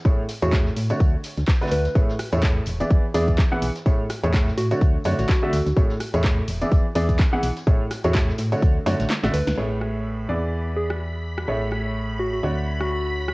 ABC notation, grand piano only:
X:1
M:4/4
L:1/16
Q:"Swing 16ths" 1/4=126
K:A
V:1 name="Grand piano"
[A,,A,EGc] z2 [A,,A,EGc]2 z2 [D,A,DFc]2 z4 [D,A,DFB]2 z | [A,,A,EGc] z2 [A,,A,EGc]2 z2 [E,B,EGd]2 z [E,B,EGd]2 z [E,B,EGf] z2 | [A,,A,EGc] z2 [A,,A,EGc]2 z2 [D,A,DFc]2 z [D,A,DFc]2 z [D,A,DFe] z2 | [A,,A,EGc] z2 [A,,A,EGc]2 z2 [E,B,EGd]2 z [E,B,EGd]2 z [E,B,EGf] z2 |
[A,,A,EGc] z2 [A,,A,EGc]2 z2 [D,A,DFc]2 z [D,A,DFc]2 z [D,A,DFe] z2 | [A,,A,EGc]6 [E,B,EGd]8- [E,B,EGd]2 | [A,,A,EGc]8 [D,A,DFc]8 |]